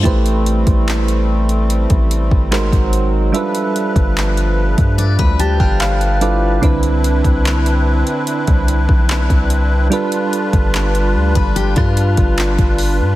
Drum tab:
HH |xxxxxx-xxxx-xxx-|xxxxxx-xxxx-xxx-|xxxxxx-xxxx-xxx-|xxxxxx-xxxxxxxo-|
CP |----x-------x---|----x-------x---|----x-------x---|----x-------x---|
SD |----------------|----------------|----------------|---------r------|
BD |o--o-----o-o-o--|---o---o-o-o----|o--o-----o-o-o--|---o---o-o-o-o--|